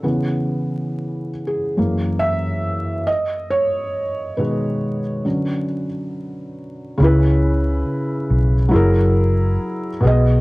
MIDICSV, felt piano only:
0, 0, Header, 1, 2, 480
1, 0, Start_track
1, 0, Tempo, 869565
1, 18, Time_signature, 4, 2, 24, 8
1, 5745, End_track
2, 0, Start_track
2, 0, Title_t, "Felt piano"
2, 0, Program_c, 0, 0
2, 0, Control_c, 0, 64, 127
2, 16, Note_on_c, 0, 49, 53
2, 19, Note_on_c, 0, 52, 52
2, 22, Note_on_c, 0, 59, 58
2, 24, Control_c, 0, 64, 0
2, 116, Control_c, 0, 64, 127
2, 714, Note_off_c, 0, 49, 0
2, 716, Note_off_c, 0, 52, 0
2, 718, Note_off_c, 0, 59, 0
2, 812, Note_on_c, 0, 68, 72
2, 978, Note_on_c, 0, 42, 47
2, 983, Note_on_c, 0, 52, 45
2, 985, Control_c, 0, 64, 0
2, 985, Note_on_c, 0, 58, 58
2, 1081, Control_c, 0, 64, 127
2, 1211, Note_on_c, 0, 76, 93
2, 1227, Note_off_c, 0, 68, 0
2, 1672, Note_off_c, 0, 76, 0
2, 1676, Note_off_c, 0, 42, 0
2, 1678, Note_off_c, 0, 52, 0
2, 1679, Note_off_c, 0, 58, 0
2, 1694, Note_on_c, 0, 75, 91
2, 1704, Control_c, 0, 64, 0
2, 1786, Control_c, 0, 64, 127
2, 1919, Note_off_c, 0, 75, 0
2, 1934, Note_on_c, 0, 73, 98
2, 2413, Note_on_c, 0, 71, 67
2, 2415, Note_on_c, 0, 47, 45
2, 2419, Note_on_c, 0, 51, 44
2, 2422, Note_on_c, 0, 56, 55
2, 2430, Note_off_c, 0, 73, 0
2, 2751, Note_off_c, 0, 47, 0
2, 2754, Note_off_c, 0, 51, 0
2, 2755, Note_off_c, 0, 56, 0
2, 2896, Note_on_c, 0, 50, 46
2, 2899, Note_on_c, 0, 54, 42
2, 2903, Note_on_c, 0, 61, 47
2, 2905, Control_c, 0, 64, 0
2, 2999, Control_c, 0, 64, 127
2, 3113, Note_off_c, 0, 71, 0
2, 3232, Note_off_c, 0, 50, 0
2, 3234, Note_off_c, 0, 54, 0
2, 3235, Note_off_c, 0, 61, 0
2, 3851, Note_on_c, 0, 49, 92
2, 3863, Note_on_c, 0, 61, 88
2, 3865, Control_c, 0, 64, 0
2, 3876, Note_on_c, 0, 64, 80
2, 3887, Note_on_c, 0, 71, 94
2, 3974, Control_c, 0, 64, 127
2, 4715, Note_off_c, 0, 49, 0
2, 4721, Note_off_c, 0, 61, 0
2, 4727, Note_off_c, 0, 64, 0
2, 4733, Note_off_c, 0, 71, 0
2, 4796, Note_on_c, 0, 54, 81
2, 4809, Note_on_c, 0, 64, 90
2, 4821, Note_on_c, 0, 68, 84
2, 4823, Control_c, 0, 64, 0
2, 4834, Note_on_c, 0, 70, 98
2, 4918, Control_c, 0, 64, 127
2, 5452, Note_off_c, 0, 54, 0
2, 5459, Note_off_c, 0, 64, 0
2, 5465, Note_off_c, 0, 68, 0
2, 5471, Note_off_c, 0, 70, 0
2, 5523, Note_on_c, 0, 47, 84
2, 5536, Note_on_c, 0, 59, 78
2, 5546, Control_c, 0, 64, 0
2, 5546, Note_on_c, 0, 68, 81
2, 5559, Note_on_c, 0, 75, 95
2, 5654, Control_c, 0, 64, 127
2, 5745, Note_off_c, 0, 47, 0
2, 5745, Note_off_c, 0, 59, 0
2, 5745, Note_off_c, 0, 68, 0
2, 5745, Note_off_c, 0, 75, 0
2, 5745, End_track
0, 0, End_of_file